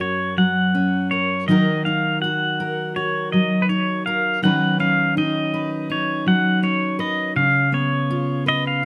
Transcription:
Already playing: steel-string acoustic guitar F#2 F#3 C#4 A#4
0.00 steel-string acoustic guitar F#4, pedal steel guitar C#5
0.37 steel-string acoustic guitar F#3, pedal steel guitar F#5
0.75 steel-string acoustic guitar C#4
1.11 steel-string acoustic guitar A#4, pedal steel guitar C#5
1.48 steel-string acoustic guitar D#3 F#3 D#4 F#4 A#4, pedal steel guitar D#5
1.85 steel-string acoustic guitar D#4, pedal steel guitar F5
2.22 steel-string acoustic guitar F#4, pedal steel guitar F#5
2.60 steel-string acoustic guitar A#4
2.96 steel-string acoustic guitar F#4, pedal steel guitar C#5
3.32 steel-string acoustic guitar F#3, pedal steel guitar D#5
3.62 pedal steel guitar B4
3.69 steel-string acoustic guitar D#4, pedal steel guitar C#5
4.06 steel-string acoustic guitar A#4, pedal steel guitar F5
4.42 steel-string acoustic guitar D#3 F#3 C#4 D#4 B4, pedal steel guitar F#5
4.80 steel-string acoustic guitar C#4, pedal steel guitar F5
5.17 steel-string acoustic guitar D#4, pedal steel guitar D#5
5.54 steel-string acoustic guitar B4
5.90 steel-string acoustic guitar D#4, pedal steel guitar C#5
6.26 steel-string acoustic guitar F#3, pedal steel guitar F#5
6.63 steel-string acoustic guitar C#4, pedal steel guitar C#5
6.99 steel-string acoustic guitar B4, pedal steel guitar D#5
7.36 steel-string acoustic guitar C#3, pedal steel guitar F5
7.72 steel-string acoustic guitar B3, pedal steel guitar C#5
8.11 steel-string acoustic guitar F4
8.46 steel-string acoustic guitar B4, pedal steel guitar D#5
8.67 pedal steel guitar F5

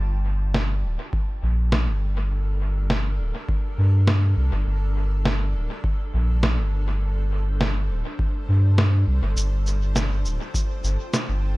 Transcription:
Already playing: sub bass G1, ambient pad G3 F4 G5 A5
0.14 ambient pad A4
0.25 ambient pad D4
0.54 snare
0.84 sub bass D1
0.97 ambient pad A#4
1.13 kick
1.43 sub bass A#1
1.72 snare
1.87 sub bass G1
2.90 snare
3.19 sub bass D1
3.49 kick
3.78 sub bass G2
4.07 snare
4.37 sub bass C2
4.52 sub bass G1
4.67 sub bass G1
5.25 snare
5.55 sub bass D1
5.84 kick
6.00 ambient pad C5
6.13 sub bass A#1
6.43 snare
6.58 sub bass G1
7.61 snare
7.90 sub bass D1
8.19 kick
8.48 sub bass G2
8.78 snare
9.07 sub bass C2
9.23 sub bass G1
9.36 sub bass G1, ambient pad F4, cabasa
9.54 ambient pad G5
9.66 cabasa
9.79 ambient pad A5
9.96 snare, cabasa
10.25 sub bass D1, cabasa
10.54 kick, cabasa
10.84 sub bass G1, cabasa
11.14 snare, cabasa
11.29 sub bass G1

